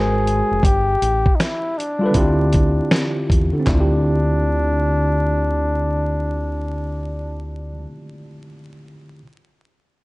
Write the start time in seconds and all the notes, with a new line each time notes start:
Already playing: G#1 G#3 F#4 G#4 A#4 C5
0.27 closed hi-hat
0.51 F1
0.63 G1 G4, kick, closed hi-hat
1.02 A1, closed hi-hat
1.26 kick
1.35 D#4
1.40 E4, finger snap, snare, closed hi-hat
1.78 D4, closed hi-hat
1.99 G3 F4
2.03 A4 B4
2.11 D3 C4 E4, kick, closed hi-hat
2.15 D2 F4 G4
2.53 kick, closed hi-hat
2.91 finger snap, snare
2.96 closed hi-hat
3.30 E2, kick, closed hi-hat
3.53 D3
3.60 C4
3.66 D2 D4 E4, kick, clap, floor tom
3.73 F4
3.80 G4